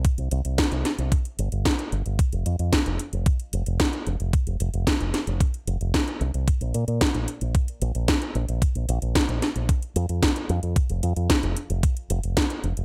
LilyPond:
<<
  \new Staff \with { instrumentName = "Fingered electric bass" } { \clef bass \time 4/4 \key bes \lydian \tempo 4 = 112 r16 c,16 c,16 c,16 r16 c,16 r16 c,16 r8 g,,16 g,,16 r8 g,,16 g,,16 | r16 f,,16 f,16 f,16 r16 f,,16 r16 f,,16 r8 f,,16 f,,16 r8 f,,16 f,,16 | r16 f,,16 f,,16 f,,16 r16 f,,16 r16 f,,16 r8 f,,16 f,,16 r8 c,16 c,16 | r16 bes,,16 bes,16 bes,16 r16 bes,,16 r16 bes,,16 r8 bes,,16 bes,,16 r8 bes,,16 bes,,16 |
r16 bes,,16 bes,,16 bes,,16 r16 bes,,16 r16 bes,,16 r8 f,16 f,16 r8 f,16 f,16 | r16 f,,16 f,16 f,16 r16 f,,16 r16 f,,16 r8 f,,16 f,,16 r8 f,,16 f,,16 | }
  \new DrumStaff \with { instrumentName = "Drums" } \drummode { \time 4/4 <hh bd>16 hh16 hh16 hh16 <hh bd sn>16 hh16 <hh sn>16 hh16 <hh bd>16 hh16 hh16 hh16 <hh bd sn>16 hh16 hh16 hh16 | <hh bd>16 hh16 hh16 hh16 <hh bd sn>16 hh16 hh16 hh16 <hh bd>16 hh16 hh16 hh16 <hh bd sn>16 hh16 hh16 hh16 | <hh bd>16 hh16 hh16 hh16 <hh bd sn>16 hh16 <hh sn>16 hh16 <hh bd>16 hh16 hh16 hh16 <hh bd sn>16 hh16 hh16 hh16 | <hh bd>16 hh16 hh16 hh16 <hh bd sn>16 hh16 hh16 hh16 <hh bd>16 hh16 hh16 hh16 <hh bd sn>16 hh16 hh16 hh16 |
<hh bd>16 hh16 hh16 hh16 <hh bd sn>16 hh16 <hh sn>16 hh16 <hh bd>16 hh16 hh16 hh16 <hh bd sn>16 hh16 hh16 hh16 | <hh bd>16 hh16 hh16 hh16 <hh bd sn>16 hh16 hh16 hh16 <hh bd>16 hh16 hh16 hh16 <hh bd sn>16 hh16 hh16 hh16 | }
>>